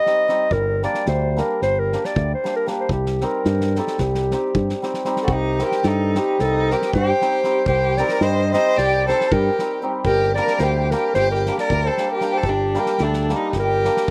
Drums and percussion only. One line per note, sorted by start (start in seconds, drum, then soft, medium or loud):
0.06 snare soft
0.29 snare soft
0.51 kick medium
0.83 snare soft
0.94 snare soft
1.06 snare soft
1.37 snare soft
1.62 snare soft
1.92 snare soft
2.05 snare soft
2.16 kick medium
2.45 snare soft
2.67 snare soft
2.89 kick medium
3.06 snare soft
3.21 snare soft
3.45 snare soft
3.61 snare soft
3.76 snare soft
3.87 snare soft
3.98 kick medium
3.98 snare soft
4.15 snare soft
4.31 snare soft
4.55 kick medium
4.69 snare soft
4.83 snare soft
4.94 snare soft
5.05 snare soft
5.16 snare soft
5.28 kick medium
5.59 snare soft
5.72 snare soft
5.83 snare soft
6.15 snare soft
6.39 snare soft
6.71 snare soft
6.82 snare soft
6.93 kick medium
7.21 snare soft
7.44 snare soft
7.66 kick medium
7.97 snare soft
8.09 snare soft
8.21 snare soft
8.53 snare soft
8.77 snare soft
9.09 snare soft
9.21 snare soft
9.32 kick medium
9.59 snare soft
10.05 kick medium
10.36 snare soft
10.47 snare soft
10.58 snare soft
10.91 snare soft
11.14 snare soft
11.46 snare soft
11.58 snare soft
11.70 kick medium
11.97 snare soft
12.21 snare soft
12.43 kick medium
12.74 snare soft
12.86 snare soft
12.98 snare soft
13.13 snare soft
13.29 snare soft
13.53 kick medium
13.53 snare soft
13.85 snare soft
13.97 snare soft